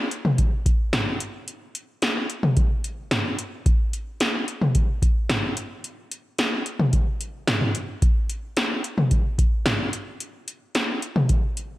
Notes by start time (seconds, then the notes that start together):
0.11 closed hi-hat
0.25 mid tom
0.38 kick, closed hi-hat
0.66 kick, closed hi-hat
0.93 snare, closed hi-hat, mid tom
1.20 closed hi-hat
1.48 closed hi-hat
1.75 closed hi-hat
2.02 snare, closed hi-hat
2.30 closed hi-hat
2.43 mid tom
2.57 kick, closed hi-hat
2.84 closed hi-hat
3.11 snare, closed hi-hat, mid tom
3.39 closed hi-hat
3.66 kick, closed hi-hat
3.93 closed hi-hat
4.20 snare, closed hi-hat
4.48 closed hi-hat
4.62 mid tom
4.75 kick, closed hi-hat
5.02 kick, closed hi-hat
5.29 snare, closed hi-hat, mid tom
5.57 closed hi-hat
5.84 closed hi-hat
6.11 closed hi-hat
6.38 snare, closed hi-hat
6.66 closed hi-hat
6.80 mid tom
6.93 kick, closed hi-hat
7.21 closed hi-hat
7.47 snare, closed hi-hat, mid tom
7.61 mid tom
7.75 closed hi-hat
8.02 kick, closed hi-hat
8.30 closed hi-hat
8.57 snare, closed hi-hat
8.84 closed hi-hat
8.98 mid tom
9.11 kick, closed hi-hat
9.39 kick, closed hi-hat
9.66 snare, closed hi-hat, mid tom
9.93 closed hi-hat
10.20 closed hi-hat
10.48 closed hi-hat
10.75 snare, closed hi-hat
11.02 closed hi-hat
11.16 mid tom
11.29 kick, closed hi-hat
11.57 closed hi-hat